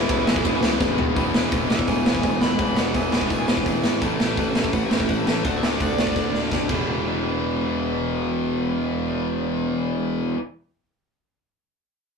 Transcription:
Already playing: E2 B2 E3 G#3 B3 E4 E5
0.09 C#2, kick, ride
0.26 B1 E3 G#3 B3 E4, snare
0.36 kick
0.44 E1 E2 B2 E3, kick, ride
0.63 C#2, snare
0.79 E1 E3 G#3 B3 E4, kick, snare
0.98 E1, floor tom
1.15 E1 E2 B2 E3 G#3 B3 E4, kick, open hi-hat
1.20 E4
1.33 E1 E3 G#3 B3 E4, snare
1.51 E1 E3 G#3 B3 E4, kick, open hi-hat
1.69 E3 G#3 B3 E4 E5, snare
1.79 kick
1.87 E1 E3 G#3 B3 E4 G#5, kick, open hi-hat
2.05 E1 E3 G#3 B3 E4, snare
2.15 kick
2.23 E1 E3 G#3 B3 E4 G#5, kick, open hi-hat
2.40 E1 E3 G#3 B3 E4 B5, snare
2.58 E1 E2 B2 E3 G#3 B3 E4, kick, open hi-hat
2.62 E4
2.75 E1 E3 G#3 B3 E4 F#5, snare
2.93 E1 E3 G#3 B3 E4, kick, open hi-hat
2.97 G#5
3.11 E3 G#3 B3 E4, snare
3.21 kick
3.29 E1 E3 G#3 B3 E4, kick, open hi-hat
3.47 E1 E3 G#3 B3 E4, snare
3.57 kick
3.65 E1 E3 G#3 B3 E4, kick, open hi-hat
3.83 G#1 E3 G#3 B3 E4, snare
4.01 A1 A2 E3 A3 C#4, kick, open hi-hat
4.05 E4
4.19 A1, snare
4.26 E5
4.37 A1 F#5, kick, open hi-hat
4.49 E5
4.55 snare
4.62 E5, kick
4.73 A1 F#5, kick, open hi-hat
4.86 E5
4.91 A1, snare
4.97 E5, kick
5.09 A1 F#5, kick, open hi-hat
5.19 E5
5.26 A1, snare
5.33 E5
5.44 D2 D3 A3 D4 F#4 F#5, kick, open hi-hat
5.57 E5
5.62 D2, snare
5.70 D5
5.80 D2, kick, open hi-hat
5.98 snare
6.07 kick
6.16 D2, kick, snare
6.32 D2, snare
6.51 D2, kick, snare
6.68 E1 E2 B2 E3 G#3 B3 E4 G#4, kick, crash
6.72 E3

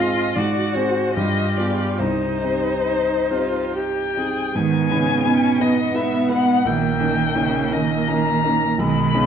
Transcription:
Already playing: G#2 F4
0.00 C4 F4 G#4 D#5
0.36 G#2 F#4 D5
0.75 C4 F#4 G#4 C5
1.14 G2 F4 G4 D#5
1.57 B3 F4 G#4 D5
1.98 C2 D#4 C5
2.43 C4 D#4 G4
2.86 D#4
3.30 C4 D#4 F4 G4
3.75 G4 G5
4.17 C4 D#4 G4 G#4
4.55 G#2 D#3 B3 G#5
4.90 C#3 B3 D#4 B4
5.25 B2 B3 C#4 D#4 B4
5.60 B3 D#4 B4 D#5
5.94 B2 B3 D#4 B4 E5
6.28 B3 D#4 B4 F#5
6.65 A#1 D#3 A#3 G5
7.00 C#4 D#4 A#4
7.36 C#3 A#3 C#4 D#4 A#4
7.71 D#3 C#4 D#4 A#4 D#5
8.08 C#4 D#4 A#4 A#5
8.44 C#4 D#4 A#4
8.78 B1 D#3 G#3 B5
9.14 C#3 B3 D#4 G#4

